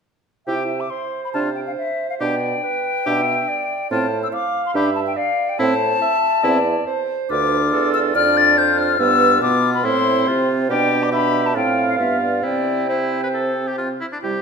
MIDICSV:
0, 0, Header, 1, 6, 480
1, 0, Start_track
1, 0, Key_signature, 0, "major"
1, 0, Tempo, 431965
1, 533, Time_signature, 4, 2, 24, 8
1, 3408, Tempo, 421644
1, 7248, Tempo, 427046
1, 13488, Tempo, 449438
1, 16080, End_track
2, 0, Start_track
2, 0, Title_t, "Flute"
2, 0, Program_c, 0, 73
2, 525, Note_on_c, 0, 79, 70
2, 894, Note_on_c, 0, 86, 62
2, 910, Note_off_c, 0, 79, 0
2, 1001, Note_on_c, 0, 84, 66
2, 1018, Note_off_c, 0, 86, 0
2, 1370, Note_off_c, 0, 84, 0
2, 1384, Note_on_c, 0, 83, 70
2, 1436, Note_off_c, 0, 83, 0
2, 1484, Note_on_c, 0, 81, 78
2, 1550, Note_off_c, 0, 81, 0
2, 1725, Note_on_c, 0, 79, 65
2, 1781, Note_off_c, 0, 79, 0
2, 1854, Note_on_c, 0, 77, 61
2, 1908, Note_off_c, 0, 77, 0
2, 1973, Note_on_c, 0, 76, 73
2, 2325, Note_off_c, 0, 76, 0
2, 2332, Note_on_c, 0, 77, 69
2, 2386, Note_off_c, 0, 77, 0
2, 2445, Note_on_c, 0, 79, 89
2, 4331, Note_off_c, 0, 79, 0
2, 4371, Note_on_c, 0, 81, 82
2, 4725, Note_off_c, 0, 81, 0
2, 4735, Note_on_c, 0, 88, 82
2, 4788, Note_off_c, 0, 88, 0
2, 4852, Note_on_c, 0, 86, 79
2, 5200, Note_off_c, 0, 86, 0
2, 5221, Note_on_c, 0, 84, 86
2, 5316, Note_off_c, 0, 84, 0
2, 5323, Note_on_c, 0, 83, 89
2, 5552, Note_off_c, 0, 83, 0
2, 5558, Note_on_c, 0, 81, 91
2, 5614, Note_off_c, 0, 81, 0
2, 5687, Note_on_c, 0, 79, 76
2, 5788, Note_off_c, 0, 79, 0
2, 5795, Note_on_c, 0, 77, 85
2, 6170, Note_on_c, 0, 79, 80
2, 6187, Note_off_c, 0, 77, 0
2, 6277, Note_on_c, 0, 81, 107
2, 6294, Note_off_c, 0, 79, 0
2, 7894, Note_off_c, 0, 81, 0
2, 8216, Note_on_c, 0, 86, 107
2, 8887, Note_off_c, 0, 86, 0
2, 8933, Note_on_c, 0, 88, 95
2, 9001, Note_off_c, 0, 88, 0
2, 9173, Note_on_c, 0, 89, 124
2, 9420, Note_on_c, 0, 93, 121
2, 9437, Note_off_c, 0, 89, 0
2, 9651, Note_on_c, 0, 91, 105
2, 9668, Note_off_c, 0, 93, 0
2, 9876, Note_on_c, 0, 89, 102
2, 9893, Note_off_c, 0, 91, 0
2, 10119, Note_on_c, 0, 88, 118
2, 10136, Note_off_c, 0, 89, 0
2, 10592, Note_off_c, 0, 88, 0
2, 10598, Note_on_c, 0, 86, 113
2, 10951, Note_off_c, 0, 86, 0
2, 10961, Note_on_c, 0, 83, 90
2, 11069, Note_on_c, 0, 84, 112
2, 11086, Note_off_c, 0, 83, 0
2, 11794, Note_off_c, 0, 84, 0
2, 12040, Note_on_c, 0, 79, 103
2, 12410, Note_on_c, 0, 86, 93
2, 12426, Note_off_c, 0, 79, 0
2, 12513, Note_off_c, 0, 86, 0
2, 12520, Note_on_c, 0, 83, 108
2, 12893, Note_on_c, 0, 81, 83
2, 12910, Note_off_c, 0, 83, 0
2, 13002, Note_off_c, 0, 81, 0
2, 13008, Note_on_c, 0, 79, 90
2, 13360, Note_off_c, 0, 79, 0
2, 13375, Note_on_c, 0, 77, 78
2, 13482, Note_off_c, 0, 77, 0
2, 13489, Note_on_c, 0, 76, 70
2, 13718, Note_off_c, 0, 76, 0
2, 13723, Note_on_c, 0, 74, 69
2, 13961, Note_off_c, 0, 74, 0
2, 13971, Note_on_c, 0, 74, 86
2, 14456, Note_on_c, 0, 72, 66
2, 14472, Note_off_c, 0, 74, 0
2, 15652, Note_off_c, 0, 72, 0
2, 16080, End_track
3, 0, Start_track
3, 0, Title_t, "Clarinet"
3, 0, Program_c, 1, 71
3, 525, Note_on_c, 1, 76, 55
3, 980, Note_off_c, 1, 76, 0
3, 1012, Note_on_c, 1, 72, 65
3, 2420, Note_off_c, 1, 72, 0
3, 2449, Note_on_c, 1, 74, 64
3, 2919, Note_off_c, 1, 74, 0
3, 2927, Note_on_c, 1, 71, 68
3, 3402, Note_on_c, 1, 76, 68
3, 3419, Note_off_c, 1, 71, 0
3, 3888, Note_on_c, 1, 74, 56
3, 3905, Note_off_c, 1, 76, 0
3, 4361, Note_off_c, 1, 74, 0
3, 4368, Note_on_c, 1, 72, 67
3, 4847, Note_on_c, 1, 77, 76
3, 4864, Note_off_c, 1, 72, 0
3, 5318, Note_on_c, 1, 76, 71
3, 5335, Note_off_c, 1, 77, 0
3, 5800, Note_on_c, 1, 74, 72
3, 5817, Note_off_c, 1, 76, 0
3, 6283, Note_off_c, 1, 74, 0
3, 6287, Note_on_c, 1, 72, 79
3, 6755, Note_off_c, 1, 72, 0
3, 6766, Note_on_c, 1, 76, 83
3, 7245, Note_on_c, 1, 74, 77
3, 7262, Note_off_c, 1, 76, 0
3, 7716, Note_off_c, 1, 74, 0
3, 7723, Note_on_c, 1, 72, 80
3, 8216, Note_on_c, 1, 71, 77
3, 8232, Note_off_c, 1, 72, 0
3, 8555, Note_off_c, 1, 71, 0
3, 8698, Note_on_c, 1, 69, 91
3, 9161, Note_off_c, 1, 69, 0
3, 9170, Note_on_c, 1, 74, 94
3, 9644, Note_on_c, 1, 72, 83
3, 9661, Note_off_c, 1, 74, 0
3, 10112, Note_off_c, 1, 72, 0
3, 10118, Note_on_c, 1, 71, 85
3, 10750, Note_off_c, 1, 71, 0
3, 11079, Note_on_c, 1, 72, 84
3, 11994, Note_off_c, 1, 72, 0
3, 12035, Note_on_c, 1, 74, 77
3, 12508, Note_off_c, 1, 74, 0
3, 12513, Note_on_c, 1, 76, 77
3, 12989, Note_off_c, 1, 76, 0
3, 13003, Note_on_c, 1, 77, 77
3, 13961, Note_on_c, 1, 79, 65
3, 13977, Note_off_c, 1, 77, 0
3, 15649, Note_off_c, 1, 79, 0
3, 15879, Note_on_c, 1, 64, 37
3, 16046, Note_off_c, 1, 64, 0
3, 16080, End_track
4, 0, Start_track
4, 0, Title_t, "Oboe"
4, 0, Program_c, 2, 68
4, 529, Note_on_c, 2, 67, 52
4, 700, Note_off_c, 2, 67, 0
4, 1495, Note_on_c, 2, 65, 52
4, 1662, Note_off_c, 2, 65, 0
4, 2451, Note_on_c, 2, 67, 60
4, 2618, Note_off_c, 2, 67, 0
4, 3403, Note_on_c, 2, 67, 62
4, 3574, Note_off_c, 2, 67, 0
4, 4372, Note_on_c, 2, 65, 63
4, 4540, Note_off_c, 2, 65, 0
4, 5330, Note_on_c, 2, 67, 66
4, 5496, Note_off_c, 2, 67, 0
4, 6282, Note_on_c, 2, 64, 75
4, 6450, Note_off_c, 2, 64, 0
4, 7246, Note_on_c, 2, 64, 64
4, 7413, Note_off_c, 2, 64, 0
4, 8221, Note_on_c, 2, 65, 75
4, 9126, Note_off_c, 2, 65, 0
4, 9172, Note_on_c, 2, 65, 67
4, 10103, Note_off_c, 2, 65, 0
4, 10122, Note_on_c, 2, 65, 71
4, 10587, Note_off_c, 2, 65, 0
4, 10597, Note_on_c, 2, 65, 76
4, 11078, Note_on_c, 2, 64, 70
4, 11095, Note_off_c, 2, 65, 0
4, 11559, Note_on_c, 2, 65, 71
4, 11576, Note_off_c, 2, 64, 0
4, 12029, Note_off_c, 2, 65, 0
4, 12036, Note_on_c, 2, 67, 74
4, 12503, Note_off_c, 2, 67, 0
4, 12509, Note_on_c, 2, 67, 63
4, 12993, Note_on_c, 2, 65, 55
4, 13010, Note_off_c, 2, 67, 0
4, 13466, Note_off_c, 2, 65, 0
4, 13473, Note_on_c, 2, 65, 59
4, 13953, Note_on_c, 2, 64, 53
4, 13969, Note_off_c, 2, 65, 0
4, 14438, Note_off_c, 2, 64, 0
4, 14444, Note_on_c, 2, 64, 67
4, 14784, Note_off_c, 2, 64, 0
4, 14814, Note_on_c, 2, 71, 63
4, 14867, Note_off_c, 2, 71, 0
4, 14926, Note_on_c, 2, 69, 54
4, 15286, Note_on_c, 2, 67, 59
4, 15302, Note_off_c, 2, 69, 0
4, 15389, Note_off_c, 2, 67, 0
4, 15396, Note_on_c, 2, 65, 61
4, 15507, Note_off_c, 2, 65, 0
4, 15637, Note_on_c, 2, 64, 60
4, 15694, Note_off_c, 2, 64, 0
4, 15765, Note_on_c, 2, 62, 46
4, 15819, Note_off_c, 2, 62, 0
4, 15879, Note_on_c, 2, 67, 55
4, 16080, Note_off_c, 2, 67, 0
4, 16080, End_track
5, 0, Start_track
5, 0, Title_t, "French horn"
5, 0, Program_c, 3, 60
5, 528, Note_on_c, 3, 64, 55
5, 699, Note_off_c, 3, 64, 0
5, 1496, Note_on_c, 3, 62, 59
5, 1662, Note_off_c, 3, 62, 0
5, 2448, Note_on_c, 3, 62, 54
5, 2616, Note_off_c, 3, 62, 0
5, 3401, Note_on_c, 3, 62, 64
5, 3573, Note_off_c, 3, 62, 0
5, 4367, Note_on_c, 3, 60, 65
5, 4537, Note_off_c, 3, 60, 0
5, 5321, Note_on_c, 3, 62, 71
5, 5489, Note_off_c, 3, 62, 0
5, 6282, Note_on_c, 3, 60, 76
5, 6450, Note_off_c, 3, 60, 0
5, 7243, Note_on_c, 3, 60, 72
5, 7411, Note_off_c, 3, 60, 0
5, 8221, Note_on_c, 3, 62, 76
5, 9126, Note_off_c, 3, 62, 0
5, 9175, Note_on_c, 3, 62, 84
5, 10105, Note_off_c, 3, 62, 0
5, 10123, Note_on_c, 3, 59, 77
5, 10587, Note_off_c, 3, 59, 0
5, 10592, Note_on_c, 3, 59, 72
5, 11074, Note_on_c, 3, 60, 82
5, 11091, Note_off_c, 3, 59, 0
5, 12032, Note_off_c, 3, 60, 0
5, 12038, Note_on_c, 3, 62, 66
5, 12510, Note_off_c, 3, 62, 0
5, 12515, Note_on_c, 3, 62, 69
5, 12997, Note_on_c, 3, 60, 61
5, 13014, Note_off_c, 3, 62, 0
5, 13478, Note_on_c, 3, 59, 57
5, 13494, Note_off_c, 3, 60, 0
5, 13953, Note_off_c, 3, 59, 0
5, 13960, Note_on_c, 3, 60, 53
5, 14441, Note_off_c, 3, 60, 0
5, 14450, Note_on_c, 3, 60, 57
5, 15625, Note_off_c, 3, 60, 0
5, 15885, Note_on_c, 3, 55, 41
5, 16050, Note_off_c, 3, 55, 0
5, 16080, End_track
6, 0, Start_track
6, 0, Title_t, "Bassoon"
6, 0, Program_c, 4, 70
6, 527, Note_on_c, 4, 48, 67
6, 934, Note_off_c, 4, 48, 0
6, 1494, Note_on_c, 4, 48, 57
6, 1892, Note_off_c, 4, 48, 0
6, 2451, Note_on_c, 4, 47, 63
6, 2849, Note_off_c, 4, 47, 0
6, 3407, Note_on_c, 4, 47, 65
6, 3811, Note_off_c, 4, 47, 0
6, 4368, Note_on_c, 4, 45, 73
6, 4770, Note_off_c, 4, 45, 0
6, 5320, Note_on_c, 4, 43, 72
6, 5722, Note_off_c, 4, 43, 0
6, 6286, Note_on_c, 4, 45, 77
6, 6684, Note_off_c, 4, 45, 0
6, 7245, Note_on_c, 4, 40, 78
6, 7645, Note_off_c, 4, 40, 0
6, 8223, Note_on_c, 4, 38, 80
6, 8697, Note_on_c, 4, 40, 80
6, 8714, Note_off_c, 4, 38, 0
6, 9174, Note_on_c, 4, 41, 78
6, 9191, Note_off_c, 4, 40, 0
6, 10114, Note_off_c, 4, 41, 0
6, 10121, Note_on_c, 4, 43, 76
6, 10590, Note_on_c, 4, 47, 79
6, 10607, Note_off_c, 4, 43, 0
6, 11074, Note_on_c, 4, 45, 75
6, 11090, Note_off_c, 4, 47, 0
6, 11556, Note_on_c, 4, 48, 76
6, 11573, Note_off_c, 4, 45, 0
6, 12031, Note_on_c, 4, 47, 77
6, 12048, Note_off_c, 4, 48, 0
6, 12995, Note_on_c, 4, 45, 67
6, 13012, Note_off_c, 4, 47, 0
6, 13479, Note_on_c, 4, 43, 59
6, 13496, Note_off_c, 4, 45, 0
6, 13960, Note_on_c, 4, 48, 63
6, 13976, Note_off_c, 4, 43, 0
6, 15648, Note_off_c, 4, 48, 0
6, 15883, Note_on_c, 4, 48, 48
6, 16080, Note_off_c, 4, 48, 0
6, 16080, End_track
0, 0, End_of_file